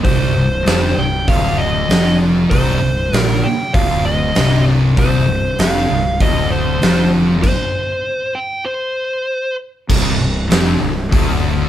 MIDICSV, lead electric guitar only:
0, 0, Header, 1, 2, 480
1, 0, Start_track
1, 0, Key_signature, -3, "minor"
1, 0, Tempo, 615385
1, 34, Time_signature, 4, 2, 24, 8
1, 9117, End_track
2, 0, Start_track
2, 0, Title_t, "Lead electric guitar"
2, 0, Program_c, 0, 29
2, 31, Note_on_c, 0, 72, 92
2, 769, Note_on_c, 0, 79, 102
2, 775, Note_off_c, 0, 72, 0
2, 1000, Note_off_c, 0, 79, 0
2, 1003, Note_on_c, 0, 77, 95
2, 1233, Note_on_c, 0, 75, 86
2, 1246, Note_off_c, 0, 77, 0
2, 1683, Note_off_c, 0, 75, 0
2, 1950, Note_on_c, 0, 72, 93
2, 2480, Note_off_c, 0, 72, 0
2, 2480, Note_on_c, 0, 70, 93
2, 2681, Note_on_c, 0, 79, 102
2, 2695, Note_off_c, 0, 70, 0
2, 2918, Note_off_c, 0, 79, 0
2, 2921, Note_on_c, 0, 77, 101
2, 3143, Note_off_c, 0, 77, 0
2, 3161, Note_on_c, 0, 75, 88
2, 3608, Note_off_c, 0, 75, 0
2, 3894, Note_on_c, 0, 72, 88
2, 4335, Note_off_c, 0, 72, 0
2, 4367, Note_on_c, 0, 77, 114
2, 4844, Note_on_c, 0, 75, 105
2, 4857, Note_off_c, 0, 77, 0
2, 5080, Note_off_c, 0, 75, 0
2, 5083, Note_on_c, 0, 72, 72
2, 5530, Note_off_c, 0, 72, 0
2, 5796, Note_on_c, 0, 72, 91
2, 6513, Note_on_c, 0, 79, 107
2, 6539, Note_off_c, 0, 72, 0
2, 6738, Note_off_c, 0, 79, 0
2, 6751, Note_on_c, 0, 72, 80
2, 7443, Note_off_c, 0, 72, 0
2, 9117, End_track
0, 0, End_of_file